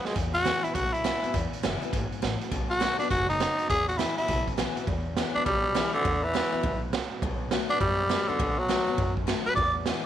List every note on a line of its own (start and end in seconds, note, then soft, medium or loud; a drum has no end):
0.00 0.15 F#2 medium
0.05 0.16 G#3 medium
0.05 snare medium
0.16 0.73 E2 medium
0.16 0.50 E2 medium
0.16 kick loud
0.16 closed hi-hat medium
0.34 0.65 F#4 loud
0.34 closed hi-hat medium
0.45 0.63 E3 medium
0.45 0.64 G#3 medium
0.45 0.64 B3 medium
0.45 0.63 E4 medium
0.45 snare loud
0.45 closed hi-hat medium
0.64 0.75 B3 soft
0.64 0.76 E4 medium
0.64 0.74 E4 medium
0.64 muted upright bass stroke medium
0.64 closed hi-hat medium
0.75 1.09 B1 loud
0.75 1.32 B2 medium
0.75 0.95 F#4 loud
0.75 kick loud
0.75 closed hi-hat loud
0.93 1.51 E4 medium
0.93 closed hi-hat medium
1.04 1.22 E3 medium
1.04 1.23 G#3 medium
1.04 1.23 B3 loud
1.04 1.22 E4 medium
1.04 snare loud
1.04 closed hi-hat medium
1.23 1.35 B3 soft
1.23 1.33 E4 medium
1.23 muted upright bass stroke medium
1.23 closed hi-hat medium
1.34 1.91 E2 medium
1.34 1.47 E2 medium
1.34 kick loud
1.34 closed hi-hat medium
1.53 closed hi-hat medium
1.63 1.79 F#1 medium
1.63 1.81 E3 medium
1.63 1.82 G#3 medium
1.63 1.82 B3 medium
1.63 1.81 E4 loud
1.63 snare loud
1.63 closed hi-hat medium
1.82 1.93 B3 medium
1.82 1.92 E4 medium
1.82 muted upright bass stroke medium
1.82 closed hi-hat medium
1.93 2.09 G#1 medium
1.93 2.21 G#2 medium
1.93 kick loud
1.93 closed hi-hat medium
2.12 muted upright bass stroke medium
2.12 closed hi-hat medium
2.22 2.38 A1 medium
2.22 2.51 A2 medium
2.22 snare loud
2.22 closed hi-hat medium
2.41 muted upright bass stroke medium
2.41 closed hi-hat medium
2.52 2.85 B1 medium
2.52 3.09 B2 loud
2.52 kick loud
2.52 closed hi-hat medium
2.70 2.98 F#4 loud
2.70 closed hi-hat medium
2.80 2.99 D#3 medium
2.80 2.99 A3 medium
2.80 2.99 B3 medium
2.80 2.98 F#4 loud
2.80 snare medium
2.80 closed hi-hat medium
2.99 3.11 B3 medium
2.99 3.10 D4 medium
2.99 3.10 F#4 medium
2.99 muted upright bass stroke medium
2.99 closed hi-hat medium
3.11 3.45 F#1 medium
3.11 3.39 G#2 loud
3.11 3.29 F#4 loud
3.11 kick loud
3.11 closed hi-hat medium
3.30 3.68 D#4 medium
3.30 closed hi-hat medium
3.40 3.69 F#2 medium
3.40 snare loud
3.40 closed hi-hat medium
3.59 muted upright bass stroke medium
3.59 closed hi-hat medium
3.70 4.03 E2 loud
3.70 4.27 E2 loud
3.70 3.88 G#4 loud
3.70 kick loud
3.70 closed hi-hat medium
3.88 4.00 F#4 medium
3.88 closed hi-hat medium
3.98 4.27 E3 medium
3.98 4.28 G#3 medium
3.98 4.28 B3 medium
3.98 4.17 E4 medium
3.98 4.28 E4 loud
3.98 snare loud
3.98 closed hi-hat medium
4.17 4.46 E4 loud
4.17 muted upright bass stroke medium
4.17 closed hi-hat medium
4.28 4.62 B1 medium
4.28 4.85 B2 medium
4.28 kick loud
4.28 closed hi-hat medium
4.47 kick medium
4.47 closed hi-hat medium
4.58 4.76 E3 medium
4.58 4.76 G#3 medium
4.58 4.77 B3 medium
4.58 4.76 E4 loud
4.58 snare loud
4.58 closed hi-hat medium
4.77 4.88 B3 soft
4.77 4.87 E4 medium
4.77 muted upright bass stroke medium
4.77 closed hi-hat medium
4.87 5.21 E2 loud
4.87 5.44 E2 medium
4.87 kick loud
4.87 open hi-hat medium
5.17 5.35 E3 medium
5.17 5.35 G#3 medium
5.17 5.36 B3 medium
5.17 5.34 E4 medium
5.17 snare loud
5.17 open hi-hat medium
5.35 5.47 B3 medium
5.35 5.45 D4 loud
5.35 5.46 E4 medium
5.35 muted upright bass stroke medium
5.46 5.80 B1 medium
5.46 6.03 B2 medium
5.46 5.93 G3 loud
5.46 kick loud
5.46 open hi-hat soft
5.75 5.93 E3 medium
5.75 5.94 G#3 medium
5.75 5.94 B3 loud
5.75 5.93 E4 loud
5.75 snare loud
5.75 open hi-hat medium
5.93 6.25 D3 medium
5.93 6.05 B3 medium
5.93 6.04 E4 medium
5.93 muted upright bass stroke medium
6.05 6.62 E2 loud
6.05 6.39 E2 loud
6.05 kick loud
6.05 open hi-hat medium
6.24 6.81 E3 loud
6.33 6.52 E3 medium
6.33 6.52 G#3 medium
6.33 6.53 B3 medium
6.33 6.51 E4 loud
6.33 snare loud
6.33 open hi-hat soft
6.52 6.64 B3 medium
6.52 6.63 E4 medium
6.52 muted upright bass stroke medium
6.63 6.97 B1 medium
6.63 6.92 G#2 medium
6.63 kick loud
6.63 open hi-hat soft
6.93 7.21 A2 medium
6.93 snare loud
6.93 open hi-hat medium
7.12 muted upright bass stroke medium
7.22 7.56 B1 loud
7.22 7.79 B2 medium
7.22 kick loud
7.22 open hi-hat medium
7.51 7.70 D#3 medium
7.51 7.70 A3 medium
7.51 7.70 B3 medium
7.51 7.69 F#4 loud
7.51 snare loud
7.51 open hi-hat soft
7.70 7.81 B3 medium
7.70 7.80 D4 loud
7.70 7.80 F#4 medium
7.70 muted upright bass stroke medium
7.80 8.14 F#2 medium
7.80 8.37 F#2 medium
7.80 8.30 G3 loud
7.80 kick loud
7.80 open hi-hat medium
8.09 8.28 D#3 medium
8.09 8.28 A3 medium
8.09 8.29 B3 medium
8.09 8.27 F#4 loud
8.09 snare loud
8.09 open hi-hat medium
8.28 8.60 D3 loud
8.28 8.40 B3 soft
8.28 8.39 F#4 medium
8.28 muted upright bass stroke medium
8.39 8.73 B1 loud
8.39 8.96 B2 loud
8.39 kick loud
8.39 open hi-hat medium
8.59 9.15 F#3 loud
8.68 8.87 D#3 medium
8.68 8.87 A3 medium
8.68 8.87 B3 medium
8.68 8.86 F#4 medium
8.68 snare loud
8.68 open hi-hat medium
8.87 8.99 B3 medium
8.87 8.98 F#4 medium
8.87 muted upright bass stroke medium
8.98 9.55 F#2 medium
8.98 9.32 F#2 medium
8.98 kick loud
8.98 open hi-hat medium
9.17 kick medium
9.27 9.45 D#3 medium
9.27 9.46 A3 medium
9.27 9.46 B3 medium
9.27 9.45 F#4 medium
9.27 snare loud
9.27 open hi-hat medium
9.46 9.57 B3 medium
9.46 9.56 F#4 medium
9.46 9.55 B4 loud
9.46 muted upright bass stroke medium
9.55 9.90 E2 loud
9.55 10.06 E2 medium
9.55 9.74 D5 loud
9.55 kick loud
9.55 open hi-hat medium
9.86 10.04 E3 medium
9.86 10.04 G#3 medium
9.86 10.05 B3 loud
9.86 10.04 E4 medium
9.86 snare medium
9.86 open hi-hat soft